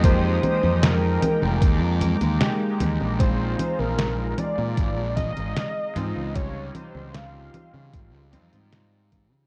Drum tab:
HH |x-x-x-x-x-xxx-x-|x-x-x-x-x-xxx-x-|x-x-x-x-x-xxx-x-|
SD |----o-------o---|----o-------o---|----o-------o---|
CG |o-ooo-ooo-ooo-oo|o-ooo-ooo-ooo-oo|o-ooo-ooo-ooo-oo|
BD |o-------o-------|o-------o-o-----|o-------o-----o-|